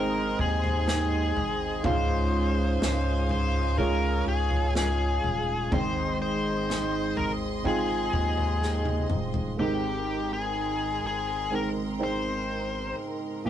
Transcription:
Already playing: sub bass G#1, steel-string acoustic guitar G#3 C4 D#4 G#4, felt piano G#3 C4 D#4 C5, string section G#4 D#5 C6, lead electric guitar A#4
0.39 sub bass D#2, lead electric guitar G#4, kick
0.64 floor tom
0.87 steel-string acoustic guitar G#3 C4 D#4 G#4, lead electric guitar G#4, snare
1.36 sub bass G#1, floor tom
1.83 sub bass C#2, felt piano G#2 G#3 C#4 F4 F5, steel-string acoustic guitar C#3 G#3 C#4 F4 G#4, lead electric guitar C5, string section F5 G#5, kick, floor tom
2.80 sub bass C#2, snare
3.29 lead electric guitar C5, floor tom
3.77 steel-string acoustic guitar G#3 C#4 F4 G#4, felt piano G#3 C#4 F4 C#5, lead electric guitar A#4, kick
4.25 sub bass C#2, lead electric guitar G#4
4.50 floor tom
4.74 steel-string acoustic guitar G#3 C#4 F4 G#4, lead electric guitar G#4, snare
5.23 sub bass D#1, floor tom
5.70 sub bass G#1, steel-string acoustic guitar G#2 D#3 G#3 C4 D#4 G#4, felt piano G#2 D#3 G#3 C4 D#4 C5, lead electric guitar C5, string section D#5 C6, kick, floor tom
6.22 lead electric guitar C5
6.70 snare
7.17 sub bass G#1, lead electric guitar A#4, floor tom
7.64 felt piano G#3 C4 D#4 F4, steel-string acoustic guitar G#3 C4 D#4 G#4, lead electric guitar G#4, kick
8.13 sub bass D#2, kick
8.37 floor tom
8.61 steel-string acoustic guitar G#3 C4 D#4 G#4, snare
8.85 high tom
9.10 sub bass D#1, mid tom
9.34 floor tom
9.58 sub bass G#1, felt piano G#2 D#3 G#3 C4 D#4 A#4, lead electric guitar G4, string section A#4 A#5 C6
10.33 lead electric guitar G#4
11.03 sub bass G#1, lead electric guitar G#4
11.51 felt piano G#3 C4 D#4 A#4
11.55 lead electric guitar A#4
11.99 felt piano G#3 C4 D#4 C5
12.04 lead electric guitar C5
13.44 sub bass D#1, felt piano A#2 F3 A#3 D#4 A#4, lead electric guitar G4, string section F5 D#6

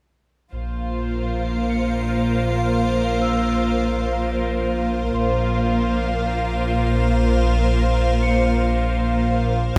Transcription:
0.53 sub bass A#1, double bass section A#1, cello section A#2, violin section F4 C5 F5, ambient pad A#4 C5 F5
1.69 celesta C#7
3.22 celesta E6
5.14 double bass section A#1, sub bass A#1, cello section A#2, violin section F4 C5 F5, ambient pad A#4 C5 F5, celesta C5 C6
8.22 celesta C#7

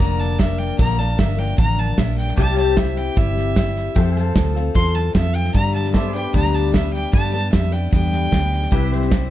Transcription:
Already playing: pedal steel guitar A#4 D5 F5
0.00 fingered electric bass F1, steel-string acoustic guitar A#2 D3 F3 A#3 D4 A#4, fiddle A#5, kick, snare
0.19 fiddle A5, snare
0.39 steel-string acoustic guitar F3 A#3 D4 A#4, fiddle E5, kick, snare, hi-hat pedal
0.58 fiddle G5, snare
0.78 fingered electric bass A#1, steel-string acoustic guitar A#2 D3 F3 A#3 D4 A#4, fiddle A#5, kick, snare
0.98 steel-string acoustic guitar F3 A#3 D4 A#4, fiddle A5, snare
1.17 fingered electric bass G1, steel-string acoustic guitar F3 A#3 D4 A#4, fiddle E5, kick, snare, hi-hat pedal
1.37 steel-string acoustic guitar F3 A#3 D4 A#4, fiddle G5, snare
1.58 fingered electric bass A1, steel-string acoustic guitar D3 F3 A#3 D4 A#4, fiddle A#5, kick, snare
1.78 fiddle A5, snare
1.97 fingered electric bass A#1, steel-string acoustic guitar F3 A#3 D4 A#4, fiddle E5, kick, snare, hi-hat pedal
2.18 fiddle G5, snare
2.28 snare
2.37 fingered electric bass C2, steel-string acoustic guitar C3 G3 C4 E4 G4, pedal steel guitar G4 D5 F5, fiddle A5, kick, snare
2.57 pedal steel guitar E5, fiddle A5, snare
2.64 pedal steel guitar C5
2.75 steel-string acoustic guitar G3 C4 E4 G4, fiddle E5, kick, snare, hi-hat pedal
2.95 steel-string acoustic guitar C4 E4 G4, fiddle G5, snare
3.15 fingered electric bass G1, steel-string acoustic guitar C3 G3 C4 E4 G4, fiddle E5, kick, snare
3.37 snare
3.55 steel-string acoustic guitar G3 C4 E4 G4, kick, snare, hi-hat pedal
3.76 snare
3.95 fingered electric bass F2, steel-string acoustic guitar F3 C4 F4 A4, pedal steel guitar G4 C5 E5, kick, snare
4.16 pedal steel guitar F5, snare
4.21 pedal steel guitar A4
4.34 fingered electric bass D2, steel-string acoustic guitar F3 C4 F4 A4, kick, snare, hi-hat pedal
4.54 steel-string acoustic guitar C4 F4 A4, snare
4.75 fingered electric bass E2, steel-string acoustic guitar C4 F4 A4, fiddle C6, kick, snare
4.95 fiddle A5, snare
5.13 fingered electric bass F2, steel-string acoustic guitar F3 C4 F4 A4, fiddle E5, kick, snare, hi-hat pedal
5.35 fiddle G5, snare
5.45 snare
5.54 steel-string acoustic guitar G2 D3 G3 B3 D4 B4, fingered electric bass G2, fiddle A#5, kick, snare
5.74 fiddle A5, snare
5.85 snare
5.93 steel-string acoustic guitar G3 B3 D4 B4, pedal steel guitar A4 C5 D5, fiddle E5, kick, snare, hi-hat pedal
6.13 steel-string acoustic guitar G3 B3 D4 B4, pedal steel guitar B4, fiddle G5, snare
6.19 pedal steel guitar G4
6.33 fingered electric bass D2, steel-string acoustic guitar G2 D3 G3 B3 D4 B4, fiddle A#5, kick, snare
6.44 snare
6.54 fiddle A5, snare
6.73 steel-string acoustic guitar G3 B3 D4 B4, fiddle E5, kick, snare, hi-hat pedal
6.93 fiddle G5, snare
7.13 steel-string acoustic guitar G2 D3 G3 B3 D4 B4, fingered electric bass G2, fiddle A5, kick, snare
7.32 steel-string acoustic guitar G3 B3 D4 B4, fiddle A5, snare
7.52 fingered electric bass F2, steel-string acoustic guitar G3 B3 D4 B4, fiddle E5, kick, snare, hi-hat pedal
7.71 steel-string acoustic guitar G3 B3 D4 B4, fiddle G5, snare
7.92 fingered electric bass E2, steel-string acoustic guitar G2 D3 G3 B3 D4 B4, fiddle G5, kick, snare
8.13 snare
8.31 fingered electric bass D2, steel-string acoustic guitar G3 B3 D4 B4, kick, snare, hi-hat pedal
8.52 snare
8.62 snare
8.71 fingered electric bass C2, steel-string acoustic guitar C3 G3 C4 E4 C5, pedal steel guitar G4 B4 E5, kick, snare
8.92 pedal steel guitar C5, snare
9.02 snare
9.10 steel-string acoustic guitar G3 C4 E4 C5, kick, snare, hi-hat pedal

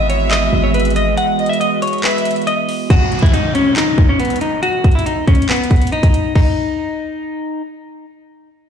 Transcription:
Already playing: 808-style bass G#1, ambient pad E3 G#3 B3 F#4, violin section E5
0.10 clean electric guitar C#5, closed hi-hat
0.31 clean electric guitar D#5, clap, closed hi-hat
0.53 808-style bass G#1
0.64 clean electric guitar C#5
0.74 clean electric guitar B4, closed hi-hat
0.80 closed hi-hat
0.85 closed hi-hat
0.90 closed hi-hat
0.96 clean electric guitar D#5, closed hi-hat
1.17 clean electric guitar F#5, closed hi-hat
1.39 violin section D#5, closed hi-hat
1.46 clean electric guitar E5, closed hi-hat
1.53 closed hi-hat
1.60 clean electric guitar D#5, closed hi-hat
1.82 clean electric guitar C#5, closed hi-hat
1.88 closed hi-hat
1.93 closed hi-hat
1.98 closed hi-hat
2.04 clean electric guitar B4, violin section E5, clap, closed hi-hat
2.11 closed hi-hat
2.18 closed hi-hat
2.25 closed hi-hat
2.31 closed hi-hat
2.36 closed hi-hat
2.42 closed hi-hat
2.47 clean electric guitar D#5, closed hi-hat
2.69 open hi-hat
2.90 clean electric guitar F#4, kick, closed hi-hat, downlifter
3.12 closed hi-hat
3.19 clean electric guitar E4, kick, closed hi-hat
3.26 closed hi-hat
3.33 clean electric guitar D#4, closed hi-hat
3.55 clean electric guitar C#4, closed hi-hat
3.76 clean electric guitar D#4, clap, closed hi-hat
3.98 kick
4.09 clean electric guitar C#4
4.19 clean electric guitar B3, closed hi-hat
4.25 closed hi-hat
4.30 closed hi-hat
4.36 closed hi-hat
4.41 clean electric guitar D#4, closed hi-hat
4.63 clean electric guitar F#4, closed hi-hat
4.84 kick, closed hi-hat
4.92 clean electric guitar E4, closed hi-hat
4.99 closed hi-hat
5.06 clean electric guitar D#4, closed hi-hat
5.27 clean electric guitar C#4, kick, closed hi-hat
5.35 closed hi-hat
5.42 closed hi-hat
5.49 clean electric guitar B3, clap, closed hi-hat
5.56 closed hi-hat
5.64 closed hi-hat
5.71 kick, closed hi-hat
5.76 closed hi-hat
5.82 closed hi-hat
5.87 closed hi-hat
5.92 clean electric guitar D#4, closed hi-hat
6.03 kick, closed hi-hat
6.14 closed hi-hat
6.35 clean electric guitar D#4, kick, crash

